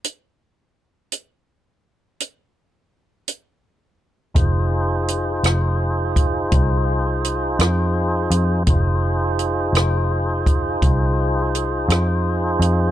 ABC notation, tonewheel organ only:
X:1
M:12/8
L:1/8
Q:3/8=56
K:Fm
V:1 name="Tonewheel organ"
z12 | [EFAc]12 | [EFAc]12 |]